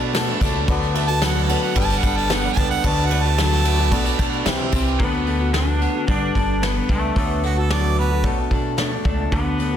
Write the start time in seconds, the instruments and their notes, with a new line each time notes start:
Already playing: upright bass B2, clean electric guitar B2, steel-string acoustic guitar F#3 A3 D4 A4, accordion D4 F#4 A4 B4, upright piano A4 B4 D5
0.13 steel-string acoustic guitar B2 F#3 A3 D4 A4, snare, ride, tambourine
0.27 steel-string acoustic guitar A3 D4 A4
0.40 upright bass C#2, steel-string acoustic guitar F#3 A3 D4 A4, kick, ride, tambourine
0.67 upright bass D2, steel-string acoustic guitar D3 F#3 B3 F#4 A4, accordion D4 F#4 A4 B4, upright piano F#4 B4 D5, kick, ride
0.83 tambourine
0.94 steel-string acoustic guitar F#3 B3 F#4 A4, clean electric guitar A3, upright piano F#4 B4 E5, ride
1.07 steel-string acoustic guitar B3 F#4 A4, harmonica A5
1.21 steel-string acoustic guitar D3 F#3 B3 F#4 A4, harmonica F#5, snare, ride, tambourine
1.43 steel-string acoustic guitar F#3, harmonica A5
1.48 steel-string acoustic guitar B3 F#4 A4, upright piano F#4 B4 D5, ride, tambourine
1.61 steel-string acoustic guitar B3 F#4 A4, harmonica F#5
1.74 upright bass G1, steel-string acoustic guitar G3 B3 D4 A4, accordion D4 G4 A4 B4, upright piano G4 A4 B4, kick, ride
1.80 harmonica A5
1.89 steel-string acoustic guitar B3 D4 A4, tambourine
1.98 harmonica F#5
2.03 upright bass G1, steel-string acoustic guitar G3 B3 D4 A4, kick, ride, tambourine
2.17 harmonica A5
2.30 steel-string acoustic guitar G3 B3 D4 A4, snare, ride, tambourine
2.35 harmonica F#5
2.43 steel-string acoustic guitar B3 D4 A4
2.53 harmonica A5
2.57 upright bass C#2, steel-string acoustic guitar G3 B3 D4 A4, kick, ride, tambourine
2.70 harmonica F#5
2.83 upright bass D2, steel-string acoustic guitar D3 F#3 B3 F#4 A4, accordion D4 F#4 A4 B4, upright piano F#4 B4 D5, kick, ride, tambourine
2.88 harmonica A5
3.05 harmonica F#5
3.10 steel-string acoustic guitar F#3 B3 F#4 A4, clean electric guitar A3, upright piano F#4 B4 D5, ride, tambourine
3.22 steel-string acoustic guitar B3 F#4 A4, harmonica A5, tambourine
3.37 steel-string acoustic guitar D3 F#3 B3 F#4 A4, snare, ride, tambourine
3.64 steel-string acoustic guitar F#3 B3 F#4 A4, upright piano F#4 B4 E5, ride, tambourine
3.78 steel-string acoustic guitar B3 F#4 A4, tambourine
3.91 upright bass B1, steel-string acoustic guitar B2 F#3 A3 D4 A4, accordion D4 F#4 A4 B4, upright piano A4 B4 D5, kick, ride, tambourine
4.06 steel-string acoustic guitar A3 D4 A4, tambourine
4.19 upright bass B2, steel-string acoustic guitar F#3 A3 D4 A4, kick, ride, tambourine
4.33 tambourine
4.45 upright bass C2, steel-string acoustic guitar C3 E3 C4 E4 G4, accordion C4 E4 G4 C5, upright piano G4 C5 E5, snare, ride, tambourine
4.59 steel-string acoustic guitar C4 E4 G4
4.72 upright bass C2, steel-string acoustic guitar E3 C4 E4 G4, kick, ride, tambourine
4.87 tambourine
4.99 upright bass D2, steel-string acoustic guitar D3 F#3 B3 F#4 A4, kick, open hi-hat
5.27 steel-string acoustic guitar F#3 B3 F#4 A4, clean electric guitar A3, open hi-hat
5.40 steel-string acoustic guitar B3 F#4 A4
5.53 steel-string acoustic guitar D3 F#3 B3 F#4 A4, lead electric guitar D4, snare, open hi-hat
5.66 steel-string acoustic guitar B3 F#4 A4
5.79 steel-string acoustic guitar F#3 B3 F#4 A4, open hi-hat
5.94 steel-string acoustic guitar B3 F#4 A4
6.07 upright bass G1, steel-string acoustic guitar G3 B3 D4 A4, kick, open hi-hat
6.21 steel-string acoustic guitar B3 D4 A4
6.34 upright bass G1, steel-string acoustic guitar G3 B3 D4 A4, kick, open hi-hat
6.61 steel-string acoustic guitar G3 B3 D4 A4, snare, open hi-hat
6.75 steel-string acoustic guitar B3 D4 A4
6.89 upright bass C#2, steel-string acoustic guitar G3 B3 D4 A4, lead electric guitar A3, kick, open hi-hat
7.16 upright bass D2, steel-string acoustic guitar D3 F#3 B3 F#4 A4, kick, open hi-hat
7.43 steel-string acoustic guitar F#3 B3 F#4 A4, clean electric guitar A3, harmonica F#4, open hi-hat
7.56 steel-string acoustic guitar B3 F#4 A4, harmonica A4
7.70 steel-string acoustic guitar D3 F#3 B3 F#4 A4, harmonica D5, snare, open hi-hat
7.96 steel-string acoustic guitar F#3 B3 F#4 A4, harmonica B4, open hi-hat
8.10 steel-string acoustic guitar B3 F#4 A4
8.23 upright bass B1, steel-string acoustic guitar B2 F#3 A3 D4 A4, kick, open hi-hat
8.37 steel-string acoustic guitar A3 D4 A4
8.50 upright bass B2, steel-string acoustic guitar F#3 A3 D4 A4, kick, open hi-hat
8.77 steel-string acoustic guitar B2 F#3 A3 D4 A4, snare, open hi-hat
8.91 steel-string acoustic guitar A3 D4 A4
9.03 upright bass C#2, steel-string acoustic guitar F#3 A3 D4 A4, kick, open hi-hat
9.32 upright bass D2, steel-string acoustic guitar D3 F#3 B3 F#4 A4, kick, open hi-hat
9.58 steel-string acoustic guitar F#3 B3 F#4 A4, clean electric guitar A3, open hi-hat
9.72 steel-string acoustic guitar F#4 A4